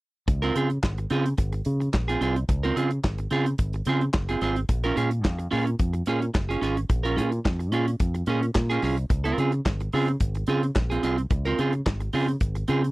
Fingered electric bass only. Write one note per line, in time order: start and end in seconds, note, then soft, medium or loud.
0.28 0.50 C#2 medium
0.55 0.77 C#3 medium
0.83 1.05 G#1 medium
1.11 1.32 C#3 medium
1.38 1.60 G#1 medium
1.66 1.88 C#3 medium
1.94 2.15 A#1 medium
2.21 2.43 C2 medium
2.49 2.71 C#2 medium
2.76 2.98 C#3 medium
3.04 3.26 G#1 medium
3.31 3.53 C#3 medium
3.59 3.81 G#1 medium
3.86 4.08 C#3 medium
4.14 4.36 F#1 medium
4.42 4.63 G#1 medium
4.69 4.91 A#1 loud
4.97 5.25 A#2 medium
5.25 5.46 F2 medium
5.53 5.74 A#2 medium
5.80 6.01 F2 medium
6.07 6.29 A#2 medium
6.35 6.56 F#1 medium
6.62 6.84 G#1 medium
6.90 7.18 A#1 loud
7.17 7.38 A#2 loud
7.45 7.72 F2 medium
7.72 7.94 A#2 medium
8.00 8.22 F2 medium
8.27 8.49 A#2 medium
8.55 8.77 A#2 medium
8.83 9.04 C2 medium
9.10 9.32 C#2 medium
9.38 9.59 C#3 medium
9.66 9.87 G#1 medium
9.93 10.15 C#3 medium
10.21 10.42 G#1 medium
10.48 10.69 C#3 loud
10.76 10.97 A#1 medium
11.03 11.25 C2 medium
11.31 11.52 C#2 medium
11.59 11.80 C#3 medium
11.86 12.08 G#1 medium
12.14 12.35 C#3 medium
12.41 12.62 G#1 medium
12.69 12.90 C#3 medium